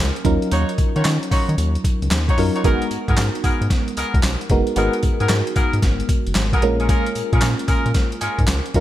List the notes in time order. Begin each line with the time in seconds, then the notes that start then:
Already playing: G#3 A#3 C#4 F4 A#4
0.00 C#2
0.16 closed hi-hat
0.25 D#2 F#3 C#4 D#4 F4 A#4, kick, closed hi-hat
0.42 closed hi-hat
0.51 D#2 D#4 F4 F#4 C#5, closed hi-hat, tambourine
0.69 closed hi-hat
0.78 D#3, kick, closed hi-hat, tambourine
0.95 D#3 D#4 F4 F#4 C#5, closed hi-hat
1.05 D#3, snare, clap, closed hi-hat, tambourine
1.23 closed hi-hat
1.31 D#3 D#4 F4 F#4 C#5, kick, open hi-hat, tambourine
1.49 D#3, closed hi-hat
1.58 D#2, closed hi-hat, tambourine
1.75 closed hi-hat
1.84 kick, closed hi-hat, tambourine
2.02 C#2, closed hi-hat
2.11 D#2, snare, clap, closed hi-hat, tambourine
2.28 D#4 F4 F#4 C#5, kick, closed hi-hat
2.38 F#2 F#3 C#4 D#4 F4 A#4, open hi-hat
2.55 D#4 F4 F#4 C#5, closed hi-hat
2.64 G#1 G#3 B3 D#4 F#4 G#4 A#4, kick, closed hi-hat, tambourine
2.82 closed hi-hat
2.91 G#2, closed hi-hat, tambourine
3.08 G#2 B3 F#4 G#4 A#4, kick, closed hi-hat
3.17 G#2, snare, clap, closed hi-hat, tambourine
3.35 closed hi-hat
3.44 G#2 B3 F#4 G#4 A#4, kick, closed hi-hat, tambourine
3.61 G#2, closed hi-hat
3.70 kick, snare, closed hi-hat, tambourine
3.88 closed hi-hat
3.97 C#2 B3 F#4 G#4 A#4, closed hi-hat, tambourine
4.14 C#2, kick, closed hi-hat
4.23 B1, snare, clap, closed hi-hat, tambourine
4.41 closed hi-hat
4.50 F#1 G#3 B3 D#4 F#4 A#4, kick, closed hi-hat
4.67 closed hi-hat
4.76 G#1 G#3 B3 D#4 F#4 G#4 A#4, closed hi-hat, tambourine
4.93 closed hi-hat
5.03 G#2, kick, closed hi-hat, tambourine
5.20 G#2 B3 F#4 G#4 A#4, closed hi-hat
5.29 G#2, snare, clap, closed hi-hat, tambourine
5.47 closed hi-hat
5.56 G#2 B3 F#4 G#4 A#4, kick, closed hi-hat, tambourine
5.73 G#2, closed hi-hat
5.82 G#1, kick, snare, closed hi-hat, tambourine
6.00 closed hi-hat
6.09 kick, closed hi-hat, tambourine
6.27 F#1, closed hi-hat
6.35 G#1, snare, clap, closed hi-hat, tambourine
6.53 B3 F#4 G#4 A#4, kick, closed hi-hat
6.62 A#1 G#3 A#3 C#4 F4 A#4, closed hi-hat
6.79 C#4 F4 G#4 A#4, closed hi-hat
6.88 C#4 F4 G#4 A#4, kick, closed hi-hat, tambourine
7.06 closed hi-hat
7.15 A#2, closed hi-hat, tambourine
7.32 A#2 C#4 F4 G#4 A#4, kick, closed hi-hat
7.41 A#2, snare, clap, closed hi-hat, tambourine
7.59 closed hi-hat
7.68 A#2 C#4 F4 G#4 A#4, kick, closed hi-hat, tambourine
7.86 A#2, closed hi-hat
7.94 kick, snare, closed hi-hat, tambourine
8.12 closed hi-hat
8.21 G#2 C#4 F4 G#4 A#4, closed hi-hat, tambourine
8.39 G#2, kick, closed hi-hat
8.47 C#2, snare, clap, closed hi-hat, tambourine
8.66 closed hi-hat
8.74 D#2 F#3 C#4 D#4 F4 A#4, kick, closed hi-hat